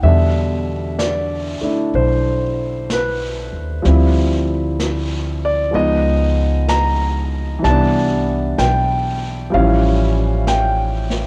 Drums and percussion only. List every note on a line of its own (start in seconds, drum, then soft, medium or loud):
0.04 brush sweep soft
0.99 brush sweep soft
0.99 snare soft
0.99 hi-hat pedal soft
1.95 brush sweep soft
2.90 brush sweep soft
2.90 snare soft
2.90 hi-hat pedal soft
3.85 brush sweep soft
3.85 snare soft
4.80 brush sweep soft
4.80 snare soft
4.80 hi-hat pedal soft
5.74 brush sweep soft
6.68 brush sweep soft
6.68 snare soft
6.68 hi-hat pedal soft
7.65 brush sweep soft
7.65 snare soft
8.58 brush sweep soft
8.58 snare soft
8.58 hi-hat pedal soft
9.53 brush sweep soft
10.47 brush sweep soft
10.47 snare soft
10.47 hi-hat pedal soft
11.10 snare soft